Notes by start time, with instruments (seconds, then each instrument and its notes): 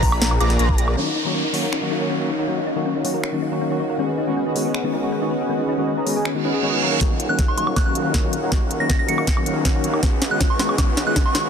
Already playing: detuned saw bass A#1, supersaw synth A#3 G#4 B4 D5 A#5, synth pluck A#6
0.03 synth arpeggio sound B4, synth bell A#5, kick, open hi-hat
0.12 detuned saw bass A#1, supersaw synth A#3 G#4 B4 D5 B5, synth arpeggio sound A#4, synth pluck B6, high woodblock
0.22 synth arpeggio sound D4, snare, closed hi-hat
0.31 synth arpeggio sound F4, high woodblock
0.40 detuned saw bass A#1, supersaw synth A#3 G#4 B4 D5 A#5, synth arpeggio sound F4, synth bell D6, synth pluck A#6, closed hi-hat
0.50 synth arpeggio sound A#4, snare
0.59 detuned saw bass A#1, supersaw synth A#3 G#4 B4 D5 A#5, synth arpeggio sound D4, synth pluck A#6, closed hi-hat
0.69 synth arpeggio sound F4, kick
0.78 detuned saw bass A#1, supersaw synth A#3 G#4 B4 D5 A#5, synth arpeggio sound B4, synth pluck A#6, closed hi-hat
0.88 synth arpeggio sound A#4, high woodblock
0.96 tine electric piano D#3 F#3 A#3 C#4 F#4, analog synth pad D#3 C#4 F#4, synth arpeggio sound C#4, supersaw synth D#4 A#4 C#5 F5 F#5, downlifter
1.07 synth arpeggio sound D#4
1.16 synth arpeggio sound D#4
1.25 tine electric piano D#3 F#3 A#3 C#4 F#4, supersaw synth D#4 A#4 C#5 F5 F#5, synth arpeggio sound A#4
1.35 synth arpeggio sound C#4
1.44 synth arpeggio sound D#4, supersaw synth D#4 A#4 C#5 F5 F#5
1.53 tine electric piano D#3 F#3 A#3 C#4 F#4, synth arpeggio sound C#5, open hi-hat
1.63 supersaw synth D#4 A#4 C#5 F5 F#5, synth arpeggio sound A#4
1.73 synth arpeggio sound C#4, supersaw synth D#4, finger snap
1.81 tine electric piano D#3 F#3 A#3 C#4 F#4, synth arpeggio sound D#4
1.91 synth arpeggio sound D#4, supersaw synth D#4 A#4 C#5 F5 F#5
2.00 tine electric piano D#3 F#3 A#3 C#4 F#4, synth arpeggio sound A#4
2.10 synth arpeggio sound C#4
2.19 tine electric piano D#3 F#3 A#3 C#4 F#4, synth arpeggio sound D#4
2.29 synth arpeggio sound C#5
2.39 supersaw synth D#4 A#4 C#5 F5 F#5, synth arpeggio sound A#4
2.47 tine electric piano D#3 F#3 A#3 C#4 F#4, synth arpeggio sound C#4
2.58 synth arpeggio sound D#4
2.67 synth arpeggio sound D#4
2.75 tine electric piano D#3 F#3 A#3 C#4 F#4, supersaw synth D#4 A#4 C#5 F5 F#5, synth arpeggio sound A#4
2.86 synth arpeggio sound C#4
2.95 synth arpeggio sound D#4, supersaw synth D#4 A#4 C#5 F5 F#5
3.04 tine electric piano D#3 F#3 A#3 C#4 F#4, synth arpeggio sound C#5, open hi-hat
3.14 supersaw synth D#4 A#4 C#5 F5 F#5, synth arpeggio sound A#4
3.24 synth arpeggio sound C#4, finger snap
3.32 tine electric piano D#3 F#3 A#3 C#4 F#4, synth arpeggio sound D#4
3.42 synth arpeggio sound D#4, supersaw synth D#4 A#4 C#5 F5 F#5
3.51 tine electric piano D#3 F#3 A#3 C#4 F#4, synth arpeggio sound A#4
3.61 synth arpeggio sound C#4, supersaw synth D#4 A#4 C#5 F5 F#5
3.70 tine electric piano D#3 F#3 A#3 C#4 F#4, synth arpeggio sound D#4
3.80 supersaw synth D#4 A#4 C#5 F5 F#5, synth arpeggio sound C#5
3.90 synth arpeggio sound A#4
3.98 tine electric piano D#3 G#3 B3 C#4 F#4, analog synth pad B3, supersaw synth C#4 G#4 B4 D#5 F#5, synth arpeggio sound C#4
4.09 synth arpeggio sound D#4
4.18 synth arpeggio sound D#4
4.26 tine electric piano D#3 G#3 B3 C#4 F#4, supersaw synth C#4 G#4 B4 D#5 F#5, synth arpeggio sound G#4
4.37 synth arpeggio sound C#4
4.46 supersaw synth C#4 G#4 B4 D#5 F#5, synth arpeggio sound D#4
4.55 tine electric piano D#3 G#3 B3 C#4 F#4, synth arpeggio sound B4, open hi-hat
4.65 supersaw synth C#4 G#4 B4 D#5 F#5, synth arpeggio sound G#4
4.74 synth arpeggio sound C#4, supersaw synth C#4 G#4 B4 D#5 F#5, finger snap
4.83 tine electric piano D#3 G#3 B3 C#4 F#4, synth arpeggio sound D#4
4.93 supersaw synth C#4 G#4 B4 D#5 F#5, synth arpeggio sound D#4
5.02 tine electric piano D#3 G#3 B3 C#4 F#4, synth arpeggio sound G#4
5.12 synth arpeggio sound C#4
5.21 tine electric piano D#3 G#3 B3 C#4 F#4, synth arpeggio sound D#4
5.31 synth arpeggio sound B4
5.41 supersaw synth C#4 G#4 B4 D#5 F#5, synth arpeggio sound G#4
5.49 tine electric piano D#3 G#3 B3 C#4 F#4, synth arpeggio sound C#4
5.59 synth arpeggio sound D#4
5.69 synth arpeggio sound D#4
5.77 tine electric piano D#3 G#3 B3 C#4 F#4, supersaw synth C#4 G#4 B4 D#5 F#5, synth arpeggio sound G#4
5.88 synth arpeggio sound C#4
5.97 supersaw synth C#4 G#4 B4 D#5 A#5, synth arpeggio sound D#4
6.06 tine electric piano D#3 G#3 B3 C#4 F#4, synth arpeggio sound B4, open hi-hat
6.16 supersaw synth C#4 G#4 B4 D#5 G#5, synth arpeggio sound G#4
6.25 synth arpeggio sound C#4, finger snap, reverse cymbal
6.34 tine electric piano D#3 G#3 B3 C#4 F#4, synth arpeggio sound D#4
6.44 supersaw synth C#4 G#4 B4 D#5 F#5, synth arpeggio sound D#4
6.54 synth arpeggio sound G#4
6.62 tine electric piano D#3 G#3 B3 C#4 F#4, synth arpeggio sound C#4, supersaw synth C#4 G#4 B4 D#5 F#5
6.73 synth arpeggio sound D#4
6.81 tine electric piano D#3 F#3 A#3 C#4 F#4, supersaw synth D#4 A#4 C#5 F5 F#5, synth arpeggio sound C#5
6.91 tine electric piano D#3 F#3 A#3 C#4 F#4, synth arpeggio sound A#4
7.00 detuned saw bass D#1, tine electric piano D#3 F#3, analog synth pad D#3 C#4 F#4, kick, snare, closed hi-hat, riser
7.20 closed hi-hat
7.28 detuned saw bass D#1, tine electric piano D#3 F#3 A#3 C#4 F#4, supersaw synth D#4 A#4 C#5 F5, synth bell F#6
7.39 kick, snare, closed hi-hat
7.48 detuned saw bass D#1, supersaw synth D#4 A#4 C#5 F5 F#5, synth bell C#6
7.57 tine electric piano D#3 F#3 A#3 C#4 F#4, synth bell C#6, closed hi-hat
7.67 detuned saw bass D#1, supersaw synth D#4 A#4 C#5 F5 F#5, high woodblock
7.76 detuned saw bass D#1, synth bell F#6, kick, snare, closed hi-hat, high woodblock
7.85 tine electric piano D#3 F#3 A#3 C#4 F#4, synth bell F#6
7.95 detuned saw bass D#1, supersaw synth D#4 A#4 C#5 F5 F#5, closed hi-hat
8.04 tine electric piano D#3 F#3 A#3 C#4 F#4
8.14 kick, snare, closed hi-hat
8.23 tine electric piano D#3 F#3 A#3 C#4 F#4
8.33 closed hi-hat
8.43 detuned saw bass D#1, supersaw synth D#4 A#4 C#5 F5 F#5
8.51 tine electric piano D#3 F#3 A#3 C#4 F#4, kick, snare, closed hi-hat
8.71 closed hi-hat
8.79 detuned saw bass D#1, tine electric piano D#3 F#3 A#3 C#4 F#4, supersaw synth D#4 A#4 C#5 F5 F#5, synth bell A#6
8.90 synth bell A#6, kick, snare, closed hi-hat
8.99 detuned saw bass D#1, supersaw synth D#4 A#4 C#5 F5 F#5, synth bell A#6
9.08 tine electric piano D#3 F#3 A#3 C#4 F#4, synth bell C#7, closed hi-hat
9.18 detuned saw bass D#1, supersaw synth D#4 A#4 C#5 F5 F#5, synth bell C#7, high woodblock
9.27 kick, snare, closed hi-hat
9.36 tine electric piano D#3 F#3 A#3 C#4 F#4, high woodblock
9.46 detuned saw bass D#1, supersaw synth D#4 A#4 C#5 F5 F#5, closed hi-hat
9.55 tine electric piano D#3 F#3 A#3 C#4 F#4
9.65 detuned saw bass D#2, supersaw synth D#4 A#4 C#5, kick, snare, closed hi-hat
9.74 tine electric piano D#3 F#3 A#3 C#4 F#4
9.84 detuned saw bass D#2, supersaw synth D#4 A#4 C#5 F5 F#5, closed hi-hat
9.94 high woodblock
10.02 detuned saw bass C#2, tine electric piano D#3 G#3 B3 C#4 F#4, analog synth pad B3, supersaw synth C#4 G#4 B4 D#5 F#5, kick, snare, closed hi-hat
10.22 snare, closed hi-hat
10.30 detuned saw bass C#2, tine electric piano D#3 G#3 B3 C#4 F#4, supersaw synth C#4 G#4 B4 D#5 F#5, synth bell F#6
10.41 kick, snare, closed hi-hat
10.50 detuned saw bass C#2, supersaw synth C#4 G#4 B4 D#5 F#5, synth bell C#6
10.58 tine electric piano D#3 G#3 B3 C#4 F#4, synth bell C#6, snare, closed hi-hat
10.69 detuned saw bass C#2, supersaw synth C#4 G#4 B4 D#5 F#5, high woodblock
10.77 detuned saw bass C#2, tine electric piano D#3 G#3 B3 C#4 F#4, supersaw synth C#4 B4 F#5, kick, snare, closed hi-hat, high woodblock
10.97 snare, closed hi-hat
11.06 detuned saw bass C#2, tine electric piano D#3 G#3 B3 C#4 F#4, supersaw synth C#4 G#4 B4 D#5 F#5, synth bell F#6
11.16 kick, snare, closed hi-hat
11.26 detuned saw bass C#2, supersaw synth C#4 G#4 B4 D#5 F#5, synth bell C#6
11.34 tine electric piano D#3 G#3 B3 C#4 F#4, synth bell C#6, snare, closed hi-hat
11.45 detuned saw bass C#2, supersaw synth C#4 G#4 B4 D#5 F#5